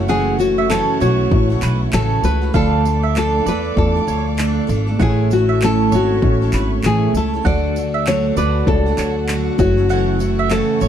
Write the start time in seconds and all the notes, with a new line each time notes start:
Already playing: F#1 A3 E4 F#4 C#5 E5 F#5 C#6
0.08 F#2 C#3 E3 A3 C#4 F#4 G#4 F#5
0.39 E3 A3 C#4 F#4, tambourine
0.58 E5
0.70 F#2 C#3 E3 A3 C#4 F#4 A4, clap
1.00 B1 E3 A3 C#4 F#4 C#5, tambourine
1.31 A1 A3 E4 F#4 C#5, kick
1.50 E3 A3 C#4 F#4
1.62 B1 E3 A3 C#4 F#4 B4, clap, tambourine
1.93 A1 F#2 C#3 E3 A3 C#4 F#4 A4, clap
2.23 C#2 E3 A3 C#4 F#4 B4, tambourine
2.42 E3 A3 C#4 F#4
2.53 D2 D3 F3 A3 D4 F4 A4 D5 F5 D6, kick
2.85 F3 A3 D4 A4, tambourine
3.03 E5
3.16 D3 F3 A3 D4 A4, clap
3.46 E2 A3 D4 A4 B4 D5, tambourine
3.76 E2 A3 D4 F4 A4 D5, kick
3.95 A3 D4 A4
4.07 D2 F3 A3 D4 A4 C#5, tambourine
4.37 D3 F3 A3 D4 A4, clap
4.67 G#1 F3 A3 D4 A4, tambourine
4.87 A3 D4 A4
4.98 A1 A2 E3 A3 C#4 E4 C#5 E5 F#5 C#6, kick
5.02 G#4
5.30 A3 C#4 E4 F#4 A4, tambourine
5.49 E5
5.62 A2 E3 A3 C#4 E4 A4, clap
5.92 G#1 A3 C#4 E4 F#4 C#5, tambourine
5.96 A4
6.21 A1 A3 C#4 E4 C#5, kick
6.42 A3 C#4 E4 A4
6.53 G#1 A3 C#4 E4 B4, clap, tambourine
6.58 A4
6.83 A1 A2 E3 A3 C#4 E4 G#4, clap
7.13 C#2 A3 C#4 E4 A4, tambourine
7.18 A4
7.33 A3 C#4 E4 A4
7.43 D2 D3 F#3 A3 D4 F#4 D5 F#5 A5, kick
7.48 F#4
7.76 F#3 A3 D4 F#4, tambourine
7.94 E5
8.07 D3 F#3 A3 D4 F#4 C#5, clap
8.36 D2 F#3 A3 D4 F#4 B4 D5, tambourine
8.66 C#2 A3 D4 F#4 A4 C#5, kick
8.74 D5
8.86 A3 D4 F#4
8.97 D2 F#3 A3 D4 F#4 C#5, clap, tambourine
9.28 D3 F#3 A3 D4 F#4, clap
9.58 F#1 E3 A3 C#4 E4 F#4 C#5 E5 C#6, kick, tambourine
9.77 E3 A3 C#4 F#4
9.89 F#2 C#3 E3 A3 C#4 F#4 F#5
10.19 E3 A3 C#4 F#4, tambourine
10.39 E5
10.50 F#2 C#3 E3 A3 C#4 F#4 A4, clap
10.80 G#1 E3 A3 C#4 F#4 C#5, tambourine